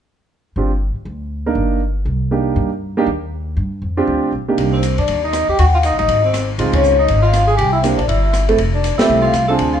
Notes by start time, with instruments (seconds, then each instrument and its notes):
0.56 upright bass G1, grand piano C4 D4 F4 G4
0.96 muted upright bass stroke
1.05 upright bass D2
1.46 grand piano A#3 D4 D#4 A#4
1.55 upright bass G1
2.05 upright bass C2
2.31 grand piano A#3 D4 D#4 G4
2.56 upright bass G2
2.97 grand piano A#3 D4 D#4 G4
3.06 upright bass D#2
3.57 upright bass G2
3.82 upright bass F2
3.97 grand piano C4 D4 F4 G4
4.07 upright bass D2
4.32 upright bass B1
4.48 grand piano C3 A#3 D4 D#4 G4
4.58 upright bass C2, ride
4.72 tenor saxophone C4, vibraphone C5
4.83 hi-hat pedal, ride
4.98 upright bass G2, tenor saxophone D4, vibraphone D5, ride
5.08 upright bass D#2, ride
5.24 tenor saxophone D#4, vibraphone D#5
5.33 cross-stick, hi-hat pedal, ride
5.48 upright bass E2, tenor saxophone G4, vibraphone G5
5.59 upright bass D#2, tenor saxophone F#4, vibraphone F#5, ride
5.74 tenor saxophone F4, vibraphone F5
5.83 tenor saxophone D#4, vibraphone D#5, hi-hat pedal, ride
5.91 upright bass C#2
5.99 upright bass A1, tenor saxophone D#4, vibraphone D#5, ride
6.08 upright bass G#1, ride
6.24 tenor saxophone C4, vibraphone C5
6.34 cross-stick, hi-hat pedal, ride
6.58 upright bass C#2, grand piano G#3 C4 D#4 F4, ride
6.73 tenor saxophone C#4, vibraphone C#5, kick, ride
6.83 hi-hat pedal
6.99 tenor saxophone D#4, vibraphone D#5
7.08 upright bass G#1, ride
7.22 tenor saxophone F4, vibraphone F5
7.33 cross-stick, hi-hat pedal, ride
7.47 tenor saxophone G#4, vibraphone G#5
7.57 upright bass C2, tenor saxophone G4, vibraphone G5, ride
7.73 tenor saxophone E4, vibraphone E5
7.82 grand piano A#3 D4 E4 G4, tenor saxophone C4, vibraphone C5, hi-hat pedal, ride
7.97 upright bass A#1, tenor saxophone D4, vibraphone D5, ride
8.08 upright bass G1, tenor saxophone E4, vibraphone E5, ride
8.33 cross-stick, hi-hat pedal, ride
8.49 grand piano A3 C4 E4 A4, ride
8.58 upright bass F1, ride
8.73 tenor saxophone D4, vibraphone D5
8.84 hi-hat pedal, ride
8.98 grand piano A3 C4 E4 G4, tenor saxophone E4, vibraphone E5, muted upright bass stroke, snare, ride
9.09 upright bass C2
9.22 tenor saxophone F4, vibraphone F5
9.33 upright bass C2, cross-stick, hi-hat pedal, ride
9.48 grand piano C4 D4 F4 G#4, tenor saxophone A4, vibraphone A5
9.58 upright bass D2, ride
9.73 tenor saxophone F4, vibraphone F5